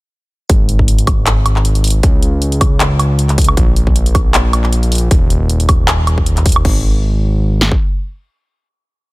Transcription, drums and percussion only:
0.50 kick loud
0.50 closed hi-hat medium
0.69 closed hi-hat medium
0.79 kick medium
0.88 closed hi-hat medium
0.98 closed hi-hat medium
1.07 kick loud
1.07 closed hi-hat medium
1.07 high woodblock medium
1.26 clap loud
1.26 closed hi-hat medium
1.46 closed hi-hat medium
1.46 high woodblock medium
1.56 clap soft
1.65 closed hi-hat medium
1.75 closed hi-hat medium
1.84 closed hi-hat medium
1.84 open hi-hat medium
1.90 closed hi-hat medium
2.03 kick loud
2.03 closed hi-hat medium
2.23 closed hi-hat medium
2.42 closed hi-hat medium
2.52 closed hi-hat medium
2.61 kick loud
2.61 closed hi-hat medium
2.61 high woodblock medium
2.80 clap loud
2.80 closed hi-hat medium
2.99 closed hi-hat medium
2.99 high woodblock medium
3.19 closed hi-hat medium
3.29 clap soft
3.29 closed hi-hat medium
3.38 kick loud
3.38 closed hi-hat medium
3.38 open hi-hat loud
3.44 closed hi-hat medium
3.48 high woodblock medium
3.57 kick loud
3.57 closed hi-hat medium
3.76 closed hi-hat medium
3.87 kick medium
3.96 closed hi-hat medium
4.06 closed hi-hat medium
4.15 kick loud
4.15 closed hi-hat medium
4.15 high woodblock medium
4.34 clap loud
4.34 closed hi-hat medium
4.53 closed hi-hat medium
4.53 high woodblock medium
4.64 clap soft
4.73 closed hi-hat medium
4.83 closed hi-hat medium
4.92 closed hi-hat medium
4.92 open hi-hat loud
4.98 closed hi-hat medium
5.11 kick loud
5.11 closed hi-hat medium
5.30 closed hi-hat medium
5.50 closed hi-hat medium
5.60 closed hi-hat medium
5.69 kick loud
5.69 closed hi-hat medium
5.69 high woodblock medium
5.88 clap loud
5.88 closed hi-hat medium
6.07 closed hi-hat medium
6.07 high woodblock medium
6.18 kick medium
6.26 closed hi-hat medium
6.37 clap soft
6.37 closed hi-hat medium
6.46 kick loud
6.46 closed hi-hat medium
6.46 open hi-hat loud
6.52 closed hi-hat medium
6.56 high woodblock medium
6.65 kick loud
6.65 crash medium
7.61 snare medium
7.72 kick medium

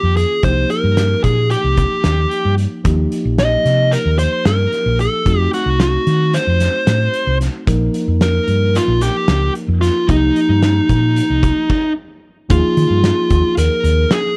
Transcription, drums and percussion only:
0.17 closed hi-hat soft
0.43 kick medium
0.43 closed hi-hat medium
0.70 closed hi-hat medium
0.97 snare medium
0.97 closed hi-hat medium
1.24 kick medium
1.24 closed hi-hat medium
1.50 closed hi-hat medium
1.77 kick medium
1.77 closed hi-hat medium
2.04 snare loud
2.04 closed hi-hat medium
2.31 closed hi-hat soft
2.58 closed hi-hat soft
2.85 kick medium
2.85 closed hi-hat medium
3.12 closed hi-hat medium
3.38 snare medium
3.38 closed hi-hat medium
3.66 snare soft
3.66 closed hi-hat medium
3.92 closed hi-hat medium
4.18 closed hi-hat medium
4.46 snare loud
4.46 closed hi-hat medium
4.72 snare soft
4.72 closed hi-hat soft
4.99 closed hi-hat soft
5.26 kick medium
5.26 closed hi-hat medium
5.53 snare soft
5.53 closed hi-hat soft
5.80 snare medium
5.80 closed hi-hat medium
6.07 snare soft
6.07 closed hi-hat medium
6.34 snare soft
6.34 closed hi-hat medium
6.60 snare soft
6.60 closed hi-hat medium
6.87 snare medium
6.87 closed hi-hat medium
7.14 closed hi-hat medium
7.41 snare soft
7.41 closed hi-hat soft
7.67 kick medium
7.67 closed hi-hat medium
7.94 closed hi-hat medium
8.21 snare medium
8.21 closed hi-hat medium
8.48 closed hi-hat medium
8.75 snare soft
8.75 closed hi-hat medium
9.01 snare soft
9.01 closed hi-hat medium
9.28 snare loud
9.28 closed hi-hat medium
9.55 closed hi-hat medium
9.82 snare soft
9.82 closed hi-hat medium
10.09 kick medium
10.09 closed hi-hat medium
10.36 closed hi-hat medium
10.63 snare medium
10.63 closed hi-hat medium
10.89 kick medium
10.89 closed hi-hat soft
11.16 closed hi-hat medium
11.43 kick medium
11.43 closed hi-hat medium
11.69 kick loud
11.69 crash medium
12.50 kick loud
12.50 closed hi-hat medium
12.77 closed hi-hat medium
13.04 snare loud
13.04 closed hi-hat medium
13.30 kick medium
13.30 closed hi-hat medium
13.57 closed hi-hat medium
13.84 closed hi-hat medium
14.11 snare medium
14.11 closed hi-hat medium

